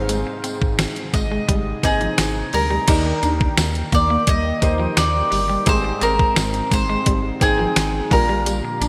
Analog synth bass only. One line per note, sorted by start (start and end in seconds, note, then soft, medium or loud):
0.00 0.25 G#1 loud
0.62 0.87 G#1 medium
1.13 1.39 G#1 medium
1.49 1.74 G#1 loud
1.83 2.09 G#1 loud
2.19 2.44 G#1 medium
2.54 2.79 D2 medium
2.88 3.13 D#2 loud
3.23 3.48 D#2 loud
3.58 3.83 D#2 loud
3.92 4.18 D#2 loud
4.27 4.53 D#2 medium
4.62 4.87 D#2 loud
4.97 5.23 D#2 loud
5.32 5.57 G1 medium
5.67 5.92 G#1 loud
6.02 6.27 G#1 loud
6.37 6.62 G#1 loud
6.71 6.97 G#1 medium
7.06 7.32 G#1 loud
7.41 7.66 G#1 medium
7.76 8.02 G#1 medium
8.11 8.61 A#1 medium
8.81 8.88 A#1 loud